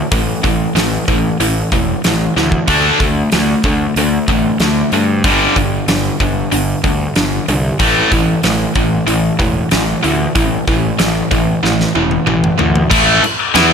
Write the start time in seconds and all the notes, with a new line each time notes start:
0.12 A1 A2 E3, kick, open hi-hat
0.43 A1 A2 E3, kick, open hi-hat
0.75 A1 A2 E3, snare, open hi-hat
1.08 A1 A2 E3, kick, open hi-hat
1.40 A1 A2 E3, open hi-hat
1.72 E1 A2 E3, kick, open hi-hat
2.04 A1 A2 E3, snare, open hi-hat
2.37 D2 A2 E3, snare
2.52 kick
2.68 D2 D3 A3 D4, kick, open hi-hat
3.00 D2 D3 A3, kick, open hi-hat
3.32 D2 D3 A3, snare, open hi-hat
3.63 D2 D3 A3, kick, open hi-hat
3.96 D2 D3 A3, open hi-hat
4.28 A1 D3 A3, kick, open hi-hat
4.60 D2 D3 A3, snare, open hi-hat
4.92 G2 D3 A3, open hi-hat
5.24 G1 G2 D3 G3, kick, open hi-hat
5.56 G1 G2 D3, kick, open hi-hat
5.88 G1 G2 D3, snare, open hi-hat
6.20 G1 G2 D3, kick, open hi-hat
6.52 G1 G2 D3, open hi-hat
6.84 D2 G2 D3, kick, open hi-hat
7.16 G1 G2 D3, snare, open hi-hat
7.48 C2 G2 D3, open hi-hat
7.79 A1 A2 E3 A3, kick, open hi-hat
8.12 A1 A2 E3, kick, open hi-hat
8.43 A1 A2 E3, snare, open hi-hat
8.75 A1 A2 E3, kick, open hi-hat
9.07 A1 A2 E3, open hi-hat
9.39 E1 A2 E3, kick, open hi-hat
9.71 A1 A2 E3, snare, open hi-hat
10.03 D2 A2 E3, open hi-hat
10.35 A1 A2 E3, kick, open hi-hat
10.67 A1 A2 E3, kick, open hi-hat
10.99 A1 A2 E3, snare, open hi-hat
11.31 A1 A2 E3, kick, open hi-hat
11.63 A1 A2 E3, snare
11.80 snare
11.95 E1 A2 E3, high tom
12.11 high tom
12.27 A1 A2 E3, mid tom
12.44 mid tom
12.59 D2 A2 E3, floor tom
12.76 floor tom
12.90 A1 A2 E3 A3, kick, crash
13.23 muted distorted electric guitar stroke, muted picked electric bass stroke, crash
13.54 E2 E3 B3 E4, snare, crash